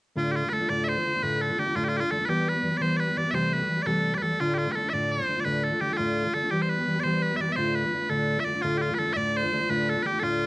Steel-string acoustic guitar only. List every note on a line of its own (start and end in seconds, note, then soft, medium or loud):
0.16 0.43 D2 medium
0.16 0.43 A2 medium
0.16 0.43 D3 medium
0.16 0.43 A3 medium
0.16 0.43 D4 medium
0.16 0.42 F4 medium
0.44 0.50 D3 soft
0.44 0.51 A3 soft
0.44 0.52 D4 soft
0.44 0.52 F4 soft
0.52 0.60 D3 soft
0.52 0.61 A3 medium
0.52 0.60 D4 soft
0.52 0.59 F4 soft
0.60 0.69 D3 soft
0.60 0.69 A3 soft
0.60 0.69 D4 soft
0.60 0.69 F4 soft
0.69 0.97 D2 medium
0.69 0.96 A2 medium
0.69 0.97 D3 medium
0.69 0.97 A3 medium
0.69 0.97 D4 medium
0.69 0.96 F4 medium
0.97 1.04 D3 soft
0.97 1.04 A3 soft
0.97 1.05 D4 soft
0.97 1.05 F4 soft
1.05 1.13 D3 soft
1.05 1.14 A3 soft
1.05 1.14 D4 soft
1.05 1.13 F4 medium
1.14 1.22 D3 soft
1.14 1.22 A3 soft
1.14 1.22 D4 soft
1.14 1.22 F4 soft
1.22 1.49 D2 medium
1.22 1.50 A2 medium
1.22 1.50 D3 medium
1.22 1.50 A3 medium
1.22 1.49 D4 medium
1.22 1.49 F4 medium
1.50 1.57 D3 soft
1.50 1.57 A3 soft
1.50 1.58 D4 soft
1.50 1.58 F4 soft
1.58 1.66 D3 soft
1.58 1.66 A3 medium
1.58 1.66 D4 medium
1.58 1.65 F4 soft
1.67 1.74 D3 soft
1.67 1.74 A3 soft
1.67 1.74 D4 soft
1.67 1.75 F4 soft
1.75 2.02 D2 medium
1.75 2.02 A2 medium
1.75 2.02 D3 medium
1.75 2.02 A3 medium
1.75 2.01 D4 medium
1.75 2.00 F4 medium
2.01 2.10 D3 soft
2.01 2.11 A3 soft
2.01 2.11 D4 soft
2.01 2.10 F4 soft
2.11 2.19 D3 soft
2.11 2.19 A3 soft
2.11 2.19 D4 soft
2.11 2.18 F4 medium
2.19 2.27 D3 soft
2.19 2.28 A3 soft
2.19 2.28 D4 soft
2.19 2.28 F4 soft
2.28 2.55 E3 medium
2.28 2.55 G3 medium
2.28 2.54 B3 medium
2.28 2.53 G4 medium
2.54 2.62 G3 soft
2.54 2.62 B3 soft
2.54 2.63 G4 soft
2.63 2.72 E3 soft
2.63 2.72 G3 soft
2.63 2.71 B3 soft
2.63 2.70 G4 soft
2.71 2.80 G3 soft
2.71 2.80 B3 soft
2.71 2.80 G4 medium
2.81 3.08 E3 medium
2.81 3.08 G3 medium
2.81 3.07 B3 medium
2.81 3.06 G4 medium
3.07 3.16 G3 soft
3.07 3.17 B3 soft
3.07 3.16 G4 soft
3.16 3.25 E3 soft
3.16 3.25 G3 soft
3.16 3.25 B3 soft
3.16 3.24 G4 soft
3.25 3.32 G3 soft
3.25 3.34 B3 soft
3.25 3.33 G4 soft
3.33 3.60 C3 medium
3.33 3.61 E3 medium
3.33 3.61 G3 medium
3.33 3.60 A3 medium
3.33 3.59 G4 medium
3.60 3.68 G3 soft
3.60 3.69 A3 soft
3.60 3.69 G4 soft
3.69 3.78 E3 medium
3.69 3.77 G3 soft
3.69 3.76 A3 medium
3.69 3.75 G4 soft
3.76 3.86 G3 soft
3.76 3.86 A3 soft
3.76 3.86 G4 soft
3.86 4.13 C3 medium
3.86 4.14 E3 medium
3.86 4.14 G3 medium
3.86 4.13 A3 medium
3.86 4.12 G4 medium
4.13 4.21 G3 soft
4.13 4.21 A3 soft
4.13 4.22 G4 soft
4.21 4.30 E3 soft
4.21 4.31 G3 soft
4.21 4.31 A3 soft
4.21 4.29 G4 soft
4.31 4.40 G3 soft
4.31 4.39 A3 soft
4.31 4.39 G4 soft
4.40 4.67 D2 medium
4.40 4.67 A2 medium
4.40 4.67 D3 medium
4.40 4.67 A3 medium
4.40 4.67 D4 medium
4.40 4.66 F4 medium
4.68 4.75 D3 soft
4.68 4.75 A3 soft
4.68 4.76 D4 soft
4.76 4.84 D3 soft
4.76 4.83 A3 soft
4.76 4.83 D4 medium
4.76 4.82 F4 soft
4.84 4.92 D3 soft
4.84 4.92 A3 soft
4.84 4.92 D4 soft
4.84 4.92 F4 soft
4.93 5.20 D2 medium
4.93 5.20 A2 medium
4.93 5.20 D3 medium
4.93 5.20 A3 medium
4.93 5.19 D4 medium
4.93 5.19 F4 medium
5.20 5.27 D3 soft
5.20 5.27 A3 soft
5.20 5.28 D4 soft
5.20 5.28 F4 soft
5.28 5.37 D3 soft
5.28 5.36 A3 soft
5.28 5.36 D4 medium
5.28 5.35 F4 soft
5.37 5.44 D3 soft
5.37 5.45 A3 soft
5.37 5.44 D4 soft
5.37 5.45 F4 soft
5.45 5.72 D2 medium
5.45 5.72 A2 medium
5.45 5.72 D3 medium
5.45 5.72 A3 medium
5.45 5.70 D4 medium
5.45 5.70 F4 medium
5.71 5.79 D3 soft
5.71 5.80 A3 soft
5.71 5.80 D4 soft
5.71 5.80 F4 medium
5.80 5.89 D3 soft
5.80 5.90 A3 medium
5.80 5.90 D4 medium
5.80 5.89 F4 medium
5.90 5.97 D3 soft
5.90 5.98 A3 soft
5.90 5.98 D4 soft
5.90 5.98 F4 soft
5.98 6.25 D2 medium
5.98 6.26 A2 medium
5.98 6.25 D3 medium
5.98 6.25 A3 medium
5.98 6.25 D4 medium
5.98 6.24 F4 medium
6.25 6.33 D3 soft
6.25 6.34 A3 soft
6.25 6.34 D4 soft
6.25 6.34 F4 soft
6.34 6.43 D3 soft
6.34 6.43 A3 soft
6.34 6.42 D4 soft
6.34 6.42 F4 medium
6.43 6.50 D3 soft
6.43 6.51 A3 soft
6.43 6.51 D4 soft
6.43 6.51 F4 soft
6.51 6.78 E3 medium
6.51 6.78 G3 medium
6.51 6.79 B3 medium
6.51 6.78 G4 medium
6.79 6.87 G3 soft
6.79 6.87 B3 soft
6.79 6.87 G4 soft
6.87 6.96 E3 medium
6.87 6.96 G3 medium
6.87 6.96 B3 medium
6.87 6.95 G4 medium
6.96 7.04 G3 soft
6.96 7.04 B3 soft
6.96 7.04 G4 soft
7.05 7.32 E3 medium
7.05 7.32 G3 medium
7.05 7.31 B3 medium
7.05 7.30 G4 medium
7.32 7.39 G3 soft
7.32 7.40 B3 soft
7.32 7.40 G4 soft
7.40 7.48 E3 soft
7.40 7.49 G3 soft
7.40 7.48 B3 soft
7.40 7.47 G4 soft
7.48 7.57 G3 soft
7.48 7.57 B3 soft
7.48 7.57 G4 soft
7.57 7.84 D2 medium
7.57 7.84 A2 medium
7.57 7.84 D3 medium
7.57 7.85 A3 medium
7.57 7.84 D4 medium
7.57 7.83 F4 medium
7.85 7.91 D3 soft
7.85 7.92 A3 soft
7.85 7.92 D4 soft
7.85 7.93 F4 medium
7.92 8.01 D3 soft
7.92 8.01 A3 soft
7.92 8.01 D4 soft
7.92 8.00 F4 medium
8.01 8.09 D3 soft
8.01 8.09 A3 soft
8.01 8.09 D4 soft
8.01 8.10 F4 soft
8.10 8.37 D2 medium
8.10 8.37 A2 medium
8.10 8.37 D3 medium
8.10 8.37 A3 medium
8.10 8.37 D4 medium
8.10 8.36 F4 medium
8.37 8.45 D3 soft
8.37 8.46 A3 soft
8.37 8.46 D4 soft
8.37 8.46 F4 soft
8.46 8.54 D3 soft
8.46 8.54 A3 soft
8.46 8.54 D4 medium
8.46 8.53 F4 soft
8.54 8.63 D3 soft
8.54 8.63 A3 soft
8.54 8.63 D4 soft
8.54 8.63 F4 soft
8.64 8.90 D2 medium
8.64 8.91 A2 medium
8.64 8.91 D3 medium
8.64 8.90 A3 medium
8.64 8.90 D4 medium
8.64 8.89 F4 medium
8.90 8.97 D3 soft
8.90 8.98 A3 soft
8.90 8.98 D4 soft
8.90 8.99 F4 medium
8.98 9.07 D3 soft
8.98 9.07 A3 medium
8.98 9.06 D4 medium
8.98 9.06 F4 medium
9.07 9.14 D3 soft
9.07 9.15 A3 soft
9.07 9.15 D4 soft
9.07 9.16 F4 soft
9.15 9.43 D2 medium
9.15 9.43 A2 medium
9.15 9.43 D3 medium
9.15 9.43 A3 medium
9.15 9.43 D4 medium
9.15 9.42 F4 medium
9.43 9.51 D3 soft
9.43 9.51 A3 soft
9.43 9.52 D4 soft
9.43 9.52 F4 soft
9.52 9.60 D3 soft
9.52 9.60 A3 medium
9.52 9.60 D4 medium
9.52 9.59 F4 soft
9.60 9.68 D3 soft
9.60 9.69 A3 soft
9.60 9.69 D4 soft
9.60 9.69 F4 soft
9.69 9.96 D2 medium
9.69 9.96 A2 medium
9.69 9.96 D3 medium
9.69 9.96 A3 medium
9.69 9.95 D4 medium
9.69 9.94 F4 medium
9.95 10.03 D3 soft
9.95 10.04 A3 soft
9.95 10.04 D4 soft
9.95 10.04 F4 soft
10.04 10.13 D3 soft
10.04 10.12 A3 medium
10.04 10.12 D4 soft
10.04 10.11 F4 medium
10.12 10.21 D3 soft
10.12 10.21 A3 soft
10.12 10.21 D4 soft
10.12 10.21 F4 soft
10.21 10.46 D2 medium
10.21 10.46 A2 medium
10.21 10.46 D3 medium
10.21 10.46 A3 medium
10.21 10.46 D4 medium
10.21 10.46 F4 medium